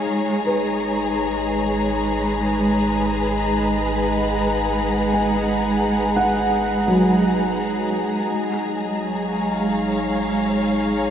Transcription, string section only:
0, 0, Header, 1, 2, 480
1, 0, Start_track
1, 0, Tempo, 1034483
1, 7, Time_signature, 4, 2, 24, 8
1, 5152, End_track
2, 0, Start_track
2, 0, Title_t, "String section"
2, 0, Program_c, 0, 48
2, 0, Note_on_c, 0, 56, 51
2, 0, Note_on_c, 0, 68, 61
2, 0, Note_on_c, 0, 73, 63
2, 0, Note_on_c, 0, 82, 55
2, 833, Note_on_c, 0, 71, 66
2, 1549, Note_off_c, 0, 73, 0
2, 1733, Note_on_c, 0, 78, 53
2, 3846, Note_off_c, 0, 78, 0
2, 3847, Note_off_c, 0, 71, 0
2, 4219, Note_on_c, 0, 73, 60
2, 4324, Note_on_c, 0, 77, 55
2, 5152, Note_off_c, 0, 56, 0
2, 5152, Note_off_c, 0, 68, 0
2, 5152, Note_off_c, 0, 73, 0
2, 5152, Note_off_c, 0, 77, 0
2, 5152, Note_off_c, 0, 82, 0
2, 5152, End_track
0, 0, End_of_file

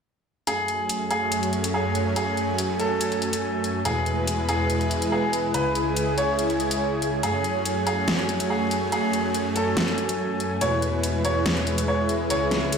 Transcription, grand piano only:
0, 0, Header, 1, 2, 480
1, 0, Start_track
1, 0, Key_signature, 3, "minor"
1, 0, Tempo, 422535
1, 536, Time_signature, 4, 2, 24, 8
1, 14516, End_track
2, 0, Start_track
2, 0, Title_t, "Grand piano"
2, 0, Program_c, 0, 0
2, 536, Note_on_c, 0, 68, 89
2, 1165, Note_off_c, 0, 68, 0
2, 1257, Note_on_c, 0, 68, 85
2, 1886, Note_off_c, 0, 68, 0
2, 1976, Note_on_c, 0, 68, 80
2, 2248, Note_off_c, 0, 68, 0
2, 2457, Note_on_c, 0, 68, 87
2, 3086, Note_off_c, 0, 68, 0
2, 3176, Note_on_c, 0, 69, 88
2, 4285, Note_off_c, 0, 69, 0
2, 4376, Note_on_c, 0, 68, 86
2, 5005, Note_off_c, 0, 68, 0
2, 5096, Note_on_c, 0, 68, 86
2, 5725, Note_off_c, 0, 68, 0
2, 5816, Note_on_c, 0, 68, 83
2, 6088, Note_off_c, 0, 68, 0
2, 6296, Note_on_c, 0, 71, 86
2, 6925, Note_off_c, 0, 71, 0
2, 7016, Note_on_c, 0, 73, 86
2, 8125, Note_off_c, 0, 73, 0
2, 8215, Note_on_c, 0, 68, 87
2, 8845, Note_off_c, 0, 68, 0
2, 8936, Note_on_c, 0, 68, 87
2, 9565, Note_off_c, 0, 68, 0
2, 9656, Note_on_c, 0, 68, 82
2, 9928, Note_off_c, 0, 68, 0
2, 10136, Note_on_c, 0, 68, 90
2, 10765, Note_off_c, 0, 68, 0
2, 10856, Note_on_c, 0, 69, 91
2, 11965, Note_off_c, 0, 69, 0
2, 12056, Note_on_c, 0, 73, 93
2, 12685, Note_off_c, 0, 73, 0
2, 12776, Note_on_c, 0, 73, 89
2, 13405, Note_off_c, 0, 73, 0
2, 13496, Note_on_c, 0, 73, 88
2, 13768, Note_off_c, 0, 73, 0
2, 13976, Note_on_c, 0, 73, 87
2, 14516, Note_off_c, 0, 73, 0
2, 14516, End_track
0, 0, End_of_file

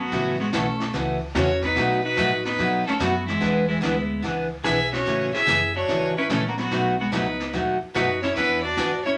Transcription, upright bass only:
0, 0, Header, 1, 3, 480
1, 0, Start_track
1, 0, Key_signature, 3, "major"
1, 0, Tempo, 412371
1, 134, Time_signature, 4, 2, 24, 8
1, 10683, End_track
2, 0, Start_track
2, 0, Title_t, "Upright bass"
2, 0, Program_c, 0, 32
2, 0, Note_on_c, 0, 32, 87
2, 122, Note_off_c, 0, 32, 0
2, 130, Note_on_c, 0, 33, 88
2, 598, Note_off_c, 0, 33, 0
2, 611, Note_on_c, 0, 35, 83
2, 1078, Note_off_c, 0, 35, 0
2, 1092, Note_on_c, 0, 37, 80
2, 1558, Note_off_c, 0, 37, 0
2, 1566, Note_on_c, 0, 40, 91
2, 2035, Note_off_c, 0, 40, 0
2, 2046, Note_on_c, 0, 47, 87
2, 2515, Note_off_c, 0, 47, 0
2, 2531, Note_on_c, 0, 45, 88
2, 2998, Note_off_c, 0, 45, 0
2, 3010, Note_on_c, 0, 44, 83
2, 3477, Note_off_c, 0, 44, 0
2, 3487, Note_on_c, 0, 42, 93
2, 3956, Note_off_c, 0, 42, 0
2, 3972, Note_on_c, 0, 40, 86
2, 4438, Note_off_c, 0, 40, 0
2, 4446, Note_on_c, 0, 38, 88
2, 4915, Note_off_c, 0, 38, 0
2, 4928, Note_on_c, 0, 37, 82
2, 5396, Note_off_c, 0, 37, 0
2, 5418, Note_on_c, 0, 35, 93
2, 5881, Note_off_c, 0, 35, 0
2, 5893, Note_on_c, 0, 33, 86
2, 6192, Note_off_c, 0, 33, 0
2, 6367, Note_on_c, 0, 30, 86
2, 6835, Note_off_c, 0, 30, 0
2, 6841, Note_on_c, 0, 32, 81
2, 7311, Note_off_c, 0, 32, 0
2, 7326, Note_on_c, 0, 34, 88
2, 7794, Note_off_c, 0, 34, 0
2, 7805, Note_on_c, 0, 35, 72
2, 8273, Note_off_c, 0, 35, 0
2, 8283, Note_on_c, 0, 37, 92
2, 8752, Note_off_c, 0, 37, 0
2, 8766, Note_on_c, 0, 39, 85
2, 9068, Note_off_c, 0, 39, 0
2, 9252, Note_on_c, 0, 42, 91
2, 9717, Note_off_c, 0, 42, 0
2, 9728, Note_on_c, 0, 40, 88
2, 10195, Note_off_c, 0, 40, 0
2, 10201, Note_on_c, 0, 44, 91
2, 10671, Note_off_c, 0, 44, 0
2, 10683, End_track
3, 0, Start_track
3, 0, Title_t, "Muted upright bass strokes"
3, 9097, Note_on_c, 9, 29, 41
3, 9213, Note_off_c, 9, 29, 0
3, 10683, End_track
0, 0, End_of_file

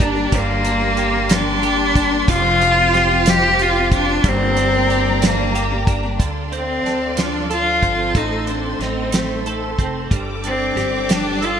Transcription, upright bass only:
0, 0, Header, 1, 2, 480
1, 0, Start_track
1, 0, Key_signature, -2, "minor"
1, 0, Tempo, 652884
1, 237, Time_signature, 6, 3, 24, 8
1, 8527, End_track
2, 0, Start_track
2, 0, Title_t, "Upright bass"
2, 0, Program_c, 0, 32
2, 0, Note_on_c, 0, 31, 101
2, 208, Note_off_c, 0, 31, 0
2, 235, Note_on_c, 0, 31, 91
2, 1645, Note_off_c, 0, 31, 0
2, 1675, Note_on_c, 0, 29, 106
2, 3085, Note_off_c, 0, 29, 0
2, 3118, Note_on_c, 0, 31, 97
2, 4526, Note_off_c, 0, 31, 0
2, 4551, Note_on_c, 0, 38, 75
2, 5003, Note_off_c, 0, 38, 0
2, 5025, Note_on_c, 0, 38, 77
2, 5720, Note_off_c, 0, 38, 0
2, 5752, Note_on_c, 0, 31, 77
2, 5979, Note_off_c, 0, 31, 0
2, 5991, Note_on_c, 0, 33, 86
2, 6444, Note_off_c, 0, 33, 0
2, 6463, Note_on_c, 0, 33, 73
2, 7159, Note_off_c, 0, 33, 0
2, 7192, Note_on_c, 0, 29, 85
2, 7419, Note_off_c, 0, 29, 0
2, 7432, Note_on_c, 0, 31, 82
2, 7885, Note_off_c, 0, 31, 0
2, 7907, Note_on_c, 0, 31, 84
2, 8527, Note_off_c, 0, 31, 0
2, 8527, End_track
0, 0, End_of_file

